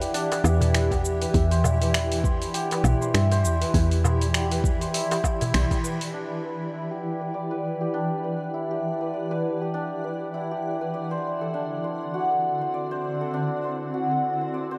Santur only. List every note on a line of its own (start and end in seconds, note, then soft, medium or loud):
0.00 0.14 D4 loud
0.00 0.74 E4 medium
0.00 0.91 G4 medium
0.00 0.44 B4 loud
0.00 2.00 D5 medium
0.14 3.87 D4 loud
0.44 1.21 B4 medium
0.74 1.94 E4 medium
0.91 2.54 G4 medium
1.21 1.57 B4 medium
1.34 3.13 E5 medium
1.51 1.87 C5 loud
1.81 2.30 B4 medium
1.94 3.74 E4 loud
2.24 2.77 C5 medium
2.54 4.34 G4 medium
2.71 3.07 B4 medium
3.01 3.31 C5 medium
3.14 4.94 E5 medium
3.31 3.67 C5 loud
3.61 4.10 B4 medium
3.74 5.40 E4 loud
4.04 4.57 C5 medium
4.34 6.91 G4 medium
4.51 4.87 B4 medium
4.81 5.10 C5 medium
4.94 7.24 E5 medium
5.11 5.53 C5 loud
5.41 5.70 E4 loud
5.54 5.90 C5 loud
5.71 6.73 E4 medium
5.84 6.43 B4 medium
6.13 7.93 D4 medium
6.43 7.21 B4 medium
6.74 8.53 E4 medium
6.91 7.80 G4 medium
7.21 7.50 B4 medium
7.34 9.13 D5 medium
7.51 8.24 B4 medium
7.81 8.70 G4 medium
7.94 9.73 D4 medium
8.24 9.00 B4 medium
8.54 10.34 E4 medium
8.71 9.61 G4 medium
9.01 9.31 B4 medium
9.14 10.93 D5 medium
9.31 10.04 B4 medium
9.61 10.51 G4 medium
9.74 11.53 D4 medium
10.04 10.81 B4 medium
10.34 13.82 E4 medium
10.51 12.20 G4 medium
10.81 11.17 B4 medium
10.94 12.73 D5 medium
11.11 11.84 C5 medium
11.41 12.31 A4 medium
11.54 13.33 D4 medium
11.84 12.61 C5 medium
12.14 13.93 F#4 medium
12.31 13.21 A4 medium
12.61 12.91 C5 medium
12.74 14.54 D5 medium
12.91 13.64 C5 medium
13.21 14.11 A4 medium
13.34 14.78 D4 medium
13.64 14.41 C5 medium
13.94 14.78 F#4 medium
14.11 14.78 A4 medium
14.41 14.71 C5 medium
14.54 14.78 D5 medium
14.71 14.78 C5 medium